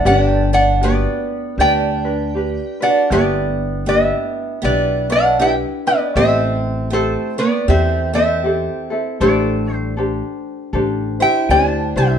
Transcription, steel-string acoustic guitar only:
0, 0, Header, 1, 2, 480
1, 0, Start_track
1, 0, Key_signature, 1, "major"
1, 0, Tempo, 762389
1, 31, Time_signature, 4, 2, 24, 8
1, 7673, End_track
2, 0, Start_track
2, 0, Title_t, "Steel-string acoustic guitar"
2, 0, Program_c, 0, 25
2, 40, Note_on_c, 0, 61, 91
2, 110, Note_off_c, 0, 61, 0
2, 110, Note_on_c, 0, 62, 91
2, 310, Note_off_c, 0, 62, 0
2, 334, Note_on_c, 0, 62, 73
2, 503, Note_off_c, 0, 62, 0
2, 521, Note_on_c, 0, 59, 75
2, 973, Note_off_c, 0, 59, 0
2, 1007, Note_on_c, 0, 62, 80
2, 1750, Note_off_c, 0, 62, 0
2, 1777, Note_on_c, 0, 62, 78
2, 1946, Note_off_c, 0, 62, 0
2, 1963, Note_on_c, 0, 59, 80
2, 2415, Note_off_c, 0, 59, 0
2, 2432, Note_on_c, 0, 59, 69
2, 2889, Note_off_c, 0, 59, 0
2, 2907, Note_on_c, 0, 59, 74
2, 3185, Note_off_c, 0, 59, 0
2, 3209, Note_on_c, 0, 62, 81
2, 3383, Note_off_c, 0, 62, 0
2, 3396, Note_on_c, 0, 64, 84
2, 3476, Note_off_c, 0, 64, 0
2, 3695, Note_on_c, 0, 59, 63
2, 3866, Note_off_c, 0, 59, 0
2, 3882, Note_on_c, 0, 60, 79
2, 4334, Note_off_c, 0, 60, 0
2, 4347, Note_on_c, 0, 57, 68
2, 4624, Note_off_c, 0, 57, 0
2, 4647, Note_on_c, 0, 59, 76
2, 4821, Note_off_c, 0, 59, 0
2, 4836, Note_on_c, 0, 60, 78
2, 5109, Note_off_c, 0, 60, 0
2, 5122, Note_on_c, 0, 60, 79
2, 5766, Note_off_c, 0, 60, 0
2, 5799, Note_on_c, 0, 57, 60
2, 6133, Note_off_c, 0, 57, 0
2, 6133, Note_on_c, 0, 55, 60
2, 6252, Note_off_c, 0, 55, 0
2, 7052, Note_on_c, 0, 64, 82
2, 7224, Note_off_c, 0, 64, 0
2, 7242, Note_on_c, 0, 61, 80
2, 7349, Note_off_c, 0, 61, 0
2, 7349, Note_on_c, 0, 62, 80
2, 7512, Note_off_c, 0, 62, 0
2, 7539, Note_on_c, 0, 60, 77
2, 7673, Note_off_c, 0, 60, 0
2, 7673, End_track
0, 0, End_of_file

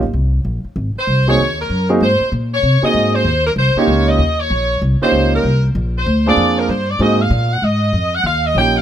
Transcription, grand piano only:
0, 0, Header, 1, 2, 480
1, 0, Start_track
1, 0, Tempo, 311850
1, 1174, Time_signature, 4, 2, 24, 8
1, 13573, End_track
2, 0, Start_track
2, 0, Title_t, "Grand piano"
2, 0, Program_c, 0, 0
2, 1960, Note_on_c, 0, 60, 62
2, 1963, Note_on_c, 0, 58, 59
2, 1967, Note_on_c, 0, 63, 58
2, 1971, Note_on_c, 0, 66, 56
2, 1980, Note_on_c, 0, 68, 69
2, 2118, Note_off_c, 0, 60, 0
2, 2119, Note_off_c, 0, 58, 0
2, 2121, Note_off_c, 0, 63, 0
2, 2123, Note_off_c, 0, 66, 0
2, 2127, Note_off_c, 0, 68, 0
2, 2912, Note_on_c, 0, 58, 71
2, 2915, Note_on_c, 0, 60, 63
2, 2919, Note_on_c, 0, 63, 64
2, 2923, Note_on_c, 0, 66, 66
2, 2924, Note_on_c, 0, 68, 76
2, 3073, Note_off_c, 0, 58, 0
2, 3074, Note_off_c, 0, 60, 0
2, 3076, Note_off_c, 0, 63, 0
2, 3079, Note_off_c, 0, 66, 0
2, 3079, Note_off_c, 0, 68, 0
2, 4342, Note_on_c, 0, 58, 57
2, 4346, Note_on_c, 0, 60, 48
2, 4349, Note_on_c, 0, 63, 48
2, 4354, Note_on_c, 0, 66, 49
2, 4360, Note_on_c, 0, 68, 62
2, 4970, Note_off_c, 0, 58, 0
2, 4972, Note_off_c, 0, 60, 0
2, 4974, Note_off_c, 0, 63, 0
2, 4976, Note_off_c, 0, 66, 0
2, 4979, Note_off_c, 0, 68, 0
2, 5803, Note_on_c, 0, 58, 77
2, 5807, Note_on_c, 0, 61, 68
2, 5811, Note_on_c, 0, 63, 67
2, 5820, Note_on_c, 0, 65, 77
2, 5823, Note_on_c, 0, 67, 89
2, 6420, Note_off_c, 0, 58, 0
2, 6422, Note_off_c, 0, 61, 0
2, 6424, Note_off_c, 0, 63, 0
2, 6429, Note_off_c, 0, 65, 0
2, 6430, Note_off_c, 0, 67, 0
2, 7720, Note_on_c, 0, 58, 67
2, 7726, Note_on_c, 0, 61, 61
2, 7728, Note_on_c, 0, 63, 63
2, 7732, Note_on_c, 0, 65, 60
2, 7738, Note_on_c, 0, 67, 73
2, 8339, Note_off_c, 0, 58, 0
2, 8342, Note_off_c, 0, 61, 0
2, 8343, Note_off_c, 0, 63, 0
2, 8345, Note_off_c, 0, 65, 0
2, 8348, Note_off_c, 0, 67, 0
2, 9638, Note_on_c, 0, 58, 68
2, 9648, Note_on_c, 0, 60, 57
2, 9654, Note_on_c, 0, 62, 58
2, 9654, Note_on_c, 0, 65, 67
2, 9657, Note_on_c, 0, 68, 70
2, 10258, Note_off_c, 0, 58, 0
2, 10263, Note_off_c, 0, 60, 0
2, 10266, Note_off_c, 0, 62, 0
2, 10266, Note_off_c, 0, 65, 0
2, 10268, Note_off_c, 0, 68, 0
2, 10771, Note_on_c, 0, 58, 61
2, 10776, Note_on_c, 0, 60, 56
2, 10780, Note_on_c, 0, 63, 58
2, 10786, Note_on_c, 0, 66, 57
2, 10790, Note_on_c, 0, 68, 65
2, 11045, Note_off_c, 0, 58, 0
2, 11048, Note_off_c, 0, 60, 0
2, 11050, Note_off_c, 0, 63, 0
2, 11053, Note_off_c, 0, 66, 0
2, 11055, Note_off_c, 0, 68, 0
2, 13178, Note_on_c, 0, 58, 52
2, 13181, Note_on_c, 0, 61, 48
2, 13186, Note_on_c, 0, 63, 43
2, 13193, Note_on_c, 0, 65, 45
2, 13195, Note_on_c, 0, 67, 57
2, 13450, Note_off_c, 0, 58, 0
2, 13451, Note_off_c, 0, 61, 0
2, 13454, Note_off_c, 0, 63, 0
2, 13457, Note_off_c, 0, 65, 0
2, 13458, Note_off_c, 0, 67, 0
2, 13573, End_track
0, 0, End_of_file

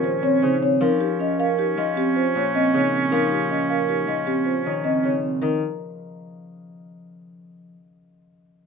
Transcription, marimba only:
0, 0, Header, 1, 2, 480
1, 0, Start_track
1, 0, Tempo, 384615
1, 1002, Time_signature, 6, 2, 24, 8
1, 10815, End_track
2, 0, Start_track
2, 0, Title_t, "Marimba"
2, 0, Program_c, 0, 12
2, 51, Note_on_c, 0, 72, 62
2, 288, Note_on_c, 0, 73, 74
2, 357, Note_off_c, 0, 72, 0
2, 531, Note_on_c, 0, 72, 61
2, 596, Note_off_c, 0, 73, 0
2, 780, Note_on_c, 0, 73, 64
2, 837, Note_off_c, 0, 72, 0
2, 1020, Note_on_c, 0, 70, 71
2, 1081, Note_off_c, 0, 73, 0
2, 1255, Note_on_c, 0, 67, 59
2, 1320, Note_off_c, 0, 70, 0
2, 1506, Note_on_c, 0, 75, 56
2, 1559, Note_off_c, 0, 67, 0
2, 1743, Note_on_c, 0, 77, 80
2, 1802, Note_off_c, 0, 75, 0
2, 1981, Note_on_c, 0, 67, 59
2, 2041, Note_off_c, 0, 77, 0
2, 2220, Note_on_c, 0, 75, 59
2, 2281, Note_off_c, 0, 67, 0
2, 2463, Note_on_c, 0, 67, 64
2, 2520, Note_off_c, 0, 75, 0
2, 2700, Note_on_c, 0, 72, 60
2, 2761, Note_off_c, 0, 67, 0
2, 2939, Note_on_c, 0, 73, 56
2, 3000, Note_off_c, 0, 72, 0
2, 3183, Note_on_c, 0, 75, 61
2, 3240, Note_off_c, 0, 73, 0
2, 3423, Note_on_c, 0, 73, 53
2, 3481, Note_off_c, 0, 75, 0
2, 3721, Note_off_c, 0, 73, 0
2, 3892, Note_on_c, 0, 70, 65
2, 4135, Note_on_c, 0, 67, 52
2, 4198, Note_off_c, 0, 70, 0
2, 4375, Note_on_c, 0, 75, 45
2, 4439, Note_off_c, 0, 67, 0
2, 4614, Note_on_c, 0, 77, 67
2, 4679, Note_off_c, 0, 75, 0
2, 4850, Note_on_c, 0, 67, 53
2, 4918, Note_off_c, 0, 77, 0
2, 5089, Note_on_c, 0, 75, 54
2, 5157, Note_off_c, 0, 67, 0
2, 5330, Note_on_c, 0, 67, 62
2, 5396, Note_off_c, 0, 75, 0
2, 5563, Note_on_c, 0, 72, 50
2, 5637, Note_off_c, 0, 67, 0
2, 5806, Note_on_c, 0, 73, 44
2, 5874, Note_off_c, 0, 72, 0
2, 6041, Note_on_c, 0, 75, 60
2, 6115, Note_off_c, 0, 73, 0
2, 6287, Note_on_c, 0, 73, 52
2, 6354, Note_off_c, 0, 75, 0
2, 6596, Note_off_c, 0, 73, 0
2, 6760, Note_on_c, 0, 70, 60
2, 6984, Note_off_c, 0, 70, 0
2, 10815, End_track
0, 0, End_of_file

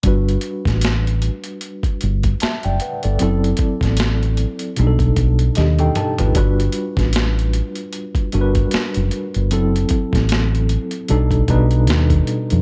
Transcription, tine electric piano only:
0, 0, Header, 1, 2, 480
1, 0, Start_track
1, 0, Key_signature, 1, "major"
1, 0, Tempo, 789474
1, 22, Time_signature, 4, 2, 24, 8
1, 7672, End_track
2, 0, Start_track
2, 0, Title_t, "Tine electric piano"
2, 0, Program_c, 0, 4
2, 20, Note_on_c, 0, 55, 57
2, 27, Note_on_c, 0, 62, 57
2, 36, Note_on_c, 0, 66, 53
2, 45, Note_on_c, 0, 71, 61
2, 124, Control_c, 0, 64, 127
2, 1449, Note_off_c, 0, 71, 0
2, 1471, Note_on_c, 0, 81, 51
2, 1474, Note_on_c, 0, 76, 42
2, 1598, Note_off_c, 0, 81, 0
2, 1600, Note_off_c, 0, 76, 0
2, 1608, Note_on_c, 0, 79, 55
2, 1613, Note_on_c, 0, 74, 48
2, 1701, Note_off_c, 0, 79, 0
2, 1703, Note_off_c, 0, 74, 0
2, 1709, Note_on_c, 0, 78, 52
2, 1713, Note_on_c, 0, 71, 46
2, 1837, Note_off_c, 0, 78, 0
2, 1840, Note_off_c, 0, 71, 0
2, 1847, Note_on_c, 0, 74, 64
2, 1850, Note_on_c, 0, 69, 51
2, 1917, Note_off_c, 0, 55, 0
2, 1921, Note_off_c, 0, 62, 0
2, 1925, Note_off_c, 0, 66, 0
2, 1937, Note_on_c, 0, 54, 60
2, 1946, Note_on_c, 0, 60, 61
2, 1950, Control_c, 0, 64, 0
2, 1954, Note_on_c, 0, 64, 58
2, 1955, Note_off_c, 0, 69, 0
2, 1962, Note_on_c, 0, 69, 68
2, 2042, Control_c, 0, 64, 127
2, 2072, Note_off_c, 0, 74, 0
2, 2881, Note_off_c, 0, 54, 0
2, 2885, Note_off_c, 0, 60, 0
2, 2889, Note_off_c, 0, 64, 0
2, 2893, Note_off_c, 0, 69, 0
2, 2897, Note_on_c, 0, 47, 66
2, 2904, Note_on_c, 0, 55, 55
2, 2909, Note_on_c, 0, 62, 63
2, 2911, Control_c, 0, 64, 0
2, 2917, Note_on_c, 0, 63, 58
2, 2922, Note_on_c, 0, 68, 49
2, 2958, Note_off_c, 0, 68, 0
2, 2961, Note_on_c, 0, 69, 68
2, 3028, Control_c, 0, 64, 127
2, 3376, Note_off_c, 0, 62, 0
2, 3380, Note_off_c, 0, 63, 0
2, 3387, Note_on_c, 0, 67, 48
2, 3387, Note_on_c, 0, 75, 53
2, 3392, Note_on_c, 0, 62, 46
2, 3403, Note_off_c, 0, 69, 0
2, 3513, Note_off_c, 0, 75, 0
2, 3516, Note_off_c, 0, 67, 0
2, 3519, Note_off_c, 0, 62, 0
2, 3527, Note_on_c, 0, 69, 58
2, 3528, Note_on_c, 0, 79, 61
2, 3531, Note_on_c, 0, 63, 48
2, 3619, Note_off_c, 0, 79, 0
2, 3629, Note_on_c, 0, 81, 65
2, 3752, Note_off_c, 0, 69, 0
2, 3754, Note_off_c, 0, 63, 0
2, 3767, Note_on_c, 0, 71, 63
2, 3770, Note_on_c, 0, 65, 54
2, 3841, Note_off_c, 0, 47, 0
2, 3844, Note_off_c, 0, 55, 0
2, 3849, Note_off_c, 0, 81, 0
2, 3862, Note_on_c, 0, 55, 64
2, 3867, Note_on_c, 0, 62, 62
2, 3868, Note_off_c, 0, 71, 0
2, 3871, Control_c, 0, 64, 0
2, 3871, Note_on_c, 0, 66, 57
2, 3875, Note_on_c, 0, 71, 73
2, 3986, Control_c, 0, 64, 127
2, 3994, Note_off_c, 0, 65, 0
2, 4758, Note_off_c, 0, 55, 0
2, 4760, Note_off_c, 0, 62, 0
2, 4762, Note_off_c, 0, 66, 0
2, 4764, Note_off_c, 0, 71, 0
2, 5063, Note_on_c, 0, 55, 68
2, 5068, Note_on_c, 0, 62, 63
2, 5072, Note_on_c, 0, 66, 62
2, 5075, Note_on_c, 0, 70, 59
2, 5114, Note_off_c, 0, 70, 0
2, 5114, Note_on_c, 0, 71, 78
2, 5734, Note_off_c, 0, 55, 0
2, 5737, Note_off_c, 0, 62, 0
2, 5739, Note_off_c, 0, 66, 0
2, 5760, Note_off_c, 0, 71, 0
2, 5784, Note_on_c, 0, 54, 67
2, 5788, Note_on_c, 0, 60, 65
2, 5790, Control_c, 0, 64, 0
2, 5791, Note_on_c, 0, 64, 58
2, 5795, Note_on_c, 0, 69, 76
2, 5909, Control_c, 0, 64, 127
2, 6679, Note_off_c, 0, 54, 0
2, 6680, Note_off_c, 0, 60, 0
2, 6682, Note_off_c, 0, 64, 0
2, 6684, Note_off_c, 0, 69, 0
2, 6743, Note_on_c, 0, 47, 75
2, 6746, Note_on_c, 0, 55, 70
2, 6749, Note_on_c, 0, 62, 68
2, 6750, Control_c, 0, 64, 0
2, 6752, Note_on_c, 0, 63, 64
2, 6755, Note_on_c, 0, 69, 75
2, 6847, Control_c, 0, 64, 127
2, 6966, Note_off_c, 0, 47, 0
2, 6968, Note_off_c, 0, 55, 0
2, 6969, Note_off_c, 0, 62, 0
2, 6971, Note_off_c, 0, 63, 0
2, 6972, Note_off_c, 0, 69, 0
2, 6984, Note_on_c, 0, 47, 73
2, 6987, Note_on_c, 0, 55, 66
2, 6990, Note_on_c, 0, 62, 62
2, 6993, Note_on_c, 0, 63, 75
2, 6996, Note_on_c, 0, 71, 83
2, 7655, Note_off_c, 0, 47, 0
2, 7656, Note_off_c, 0, 55, 0
2, 7658, Note_off_c, 0, 62, 0
2, 7659, Note_off_c, 0, 63, 0
2, 7661, Note_off_c, 0, 71, 0
2, 7672, End_track
0, 0, End_of_file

